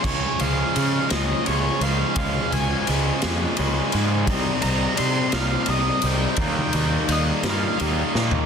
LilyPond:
<<
  \new Staff \with { instrumentName = "Lead electric guitar" } { \time 6/8 \key des \lydian \tempo 4. = 57 des''8 f''4 ees''8 des''8 f''8 | f''8 aes''8 r2 | r8 bes''8 c'''8 f''8 ees''8 g''8~ | g''4 ees''8 f''8 r4 | }
  \new Staff \with { instrumentName = "Distorted electric guitar" } { \clef bass \time 6/8 \key des \lydian <des f aes des'>8 <f aes des'>8 <des f aes des'>8 <f aes des'>8 <des f aes des'>8 <f aes des'>8 | <des f aes des'>8 <f aes des'>8 <des f aes des'>8 <f aes des'>8 <des f aes des'>8 <f aes des'>8 | <c g c' ees'>8 <g c' ees'>8 <c g c' ees'>8 <g c' ees'>8 <c g c' ees'>8 <g c' ees'>8 | <ees g bes ees'>8 <g bes ees'>8 <ees g bes ees'>8 <g bes ees'>8 <ees g bes ees'>8 <g bes ees'>8 | }
  \new Staff \with { instrumentName = "Distorted electric guitar" } { \clef bass \time 6/8 \key des \lydian <des f aes des'>8 <f aes des'>4 <des f aes des'>8 <des f aes des'>8 <f aes des'>8 | <des f aes des'>8 <f aes des'>4 <des f aes des'>8 <des f aes des'>8 <f aes des'>8 | <c g c' ees'>8 <g c' ees'>4 <c g c' ees'>8 <c g c' ees'>8 <g c' ees'>8 | <ees g bes ees'>8 <g bes ees'>4 <ees g bes ees'>8 <ees g bes ees'>8 <g bes ees'>8 | }
  \new Staff \with { instrumentName = "Picked electric bass" } { \clef bass \time 6/8 \key des \lydian des,8 des,8 des8 des,8 des,8 des,8 | des,8 des,8 des,8 f,8 des,8 aes,8 | c,8 c,8 c8 c,8 c,8 c,8 | ees,8 ees,8 ees,8 g,8 ees,8 bes,8 | }
  \new DrumStaff \with { instrumentName = "Drums" } \drummode { \time 6/8 <cymc bd>8 cymr8 cymr8 <cymr sn>8 cymr8 cymr8 | <bd cymr>8 cymr8 cymr8 <cymr sn>8 cymr8 cymr8 | <bd cymr>8 cymr8 cymr8 <cymr sn>8 cymr8 cymr8 | <bd cymr>8 cymr8 cymr8 <cymr sn>8 cymr8 sn16 tomfh16 | }
>>